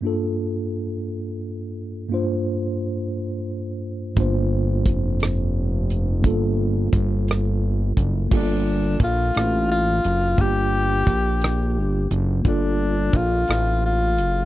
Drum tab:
CC |------|------|------|------|
HH |------|------|x-xx-x|x-xx-x|
SD |------|------|---r--|---r--|
BD |------|------|o-o---|o-o--o|

CC |x-----|------|------|
HH |--xx-x|x-xx-x|x-xx-x|
SD |---r--|---r--|---r--|
BD |o-o---|o-o---|o-o---|